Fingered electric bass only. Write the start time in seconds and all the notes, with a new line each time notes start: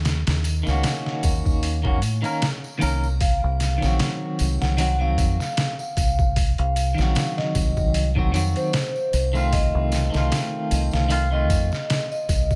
Already playing: D#2
0.28 D#2
0.67 C#2
1.24 D#2
1.46 D#2
2.02 A2
2.82 C2
3.44 C2
3.83 A#1
4.40 C2
4.62 C2
5.18 F2
5.97 C2
6.59 C2
6.98 A#1
7.55 C2
7.77 C2
8.34 F2
9.13 C2
9.75 C2
10.14 C2
10.71 C2
10.93 C2
11.50 F2
12.29 C2